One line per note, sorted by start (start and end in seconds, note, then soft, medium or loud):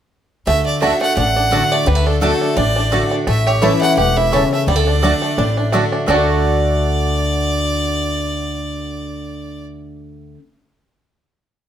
0.47 0.91 D2 medium
0.47 0.81 D3 medium
0.47 1.01 A3 medium
0.47 0.65 E5 loud
0.66 0.81 D5 medium
0.81 1.15 D3 medium
0.81 0.91 A3 medium
0.81 1.16 A3 loud
0.81 1.16 D4 medium
0.81 1.16 D4 loud
0.81 0.92 F#4 loud
0.81 1.16 F#4 loud
0.81 0.92 D5 loud
0.81 1.00 E5 medium
0.81 0.92 A5 loud
1.01 1.71 A3 medium
1.01 1.16 F#5 loud
1.17 1.61 A1 medium
1.17 1.84 A2 medium
1.17 1.35 D4 medium
1.17 1.73 F#5 loud
1.36 1.51 D4 medium
1.51 1.85 D3 medium
1.51 1.62 A3 medium
1.51 1.85 A3 medium
1.51 1.86 D4 loud
1.51 2.03 D4 medium
1.51 1.62 F#4 medium
1.51 1.86 F#4 medium
1.51 1.62 D5 medium
1.51 1.62 A5 medium
1.71 1.87 A3 medium
1.71 1.89 D5 loud
1.86 2.31 D2 medium
1.86 2.20 D3 medium
1.86 1.95 G3 medium
1.86 2.08 B4 medium
1.95 2.21 A3 medium
2.06 2.40 D4 medium
2.06 2.21 A4 medium
2.21 2.55 D3 medium
2.21 2.32 A3 medium
2.21 2.55 A3 medium
2.21 3.27 A3 medium
2.21 2.56 D4 loud
2.21 2.32 F#4 medium
2.21 2.56 F#4 loud
2.21 2.58 A4 loud
2.21 2.32 D5 medium
2.21 2.32 A5 loud
2.41 2.56 D4 medium
2.57 3.01 A1 medium
2.57 3.24 A2 medium
2.57 2.75 D4 medium
2.57 3.11 D5 loud
2.76 3.10 D4 medium
2.91 3.26 D3 medium
2.91 3.27 D3 medium
2.91 3.02 A3 medium
2.91 3.26 A3 medium
2.91 3.26 D4 medium
2.91 3.02 F#4 medium
2.91 3.26 F#4 medium
2.91 3.02 D5 medium
2.91 3.02 A5 medium
3.11 3.27 D4 medium
3.27 3.71 A1 medium
3.27 3.94 A2 medium
3.27 3.81 A3 medium
3.27 3.48 E5 loud
3.47 3.94 G4 medium
3.47 3.64 C#5 medium
3.62 3.96 E3 loud
3.62 3.72 A3 medium
3.62 3.96 A3 loud
3.62 3.96 C#4 loud
3.62 3.72 E4 medium
3.62 4.13 E4 medium
3.62 3.97 E4 loud
3.62 3.72 C#5 loud
3.62 3.81 E5 loud
3.62 3.73 A5 medium
3.82 4.52 A3 medium
3.82 3.96 F#5 loud
3.97 4.42 E1 medium
3.97 4.31 B2 medium
3.97 4.48 G4 medium
3.97 4.18 F#5 loud
4.17 4.65 E4 medium
4.17 4.52 E5 loud
4.32 4.66 C#3 medium
4.32 4.42 A3 medium
4.32 4.68 C#4 medium
4.32 4.42 E4 medium
4.32 4.43 C#5 medium
4.32 4.43 A5 medium
4.52 4.68 A3 medium
4.52 4.67 E5 medium
4.67 5.12 D2 medium
4.67 5.02 D3 medium
4.67 4.76 G3 medium
4.67 5.89 D5 medium
4.76 5.03 A3 medium
4.87 5.02 D4 medium
5.02 5.37 D3 medium
5.02 5.13 A3 medium
5.02 5.37 A3 medium
5.02 5.37 D4 medium
5.02 5.37 D4 loud
5.02 5.13 F#4 loud
5.02 5.37 F#4 loud
5.02 5.13 D5 medium
5.02 5.13 A5 loud
5.22 5.70 A3 medium
5.38 5.82 A1 medium
5.38 6.05 A2 medium
5.38 5.56 D4 medium
5.57 5.91 D4 medium
5.72 6.07 D3 medium
5.72 6.07 A3 medium
5.72 5.83 A3 medium
5.72 6.07 A3 medium
5.72 6.07 D4 loud
5.72 5.83 F#4 medium
5.72 6.07 F#4 medium
5.72 5.83 D5 medium
5.72 5.84 A5 loud
5.92 6.08 D4 medium
6.06 10.34 D2 medium
6.06 10.38 D3 medium
6.06 10.38 A3 medium
6.06 10.34 A3 medium
6.06 10.39 A3 medium
6.06 10.39 D4 medium
6.06 10.35 D4 medium
6.06 10.38 F#4 loud
6.06 10.39 F#4 medium
6.06 9.65 D5 loud
6.06 10.39 D5 loud
6.06 10.39 A5 loud
6.12 10.36 F#4 medium
6.12 10.37 A4 medium